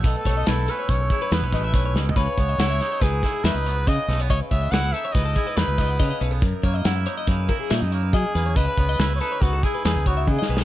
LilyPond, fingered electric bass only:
\new Staff \with { instrumentName = "Fingered electric bass" } { \clef bass \time 5/4 \key cis \minor \tempo 4 = 141 b,,16 r16 b,,8 b,,8 r8 b,,8 r8 e,16 b,,16 a,,8 b,,8 cis,8 | cis,16 r16 cis,8 cis,8 r8 cis,8 r8 e,16 cis,8. cis16 r16 b,,8 | cis,16 r16 cis,8 cis,8 r8 cis,8 r8 e,16 cis,8. cis16 r16 b,,8 | fis,16 r16 fis,8 fis,8 r8 fis,8 r8 ais,16 fis,8. fis16 r16 e,8 |
cis,16 r16 cis,8 cis,8 r8 cis,8 r8 e,16 cis,8. cis16 r16 b,,8 | }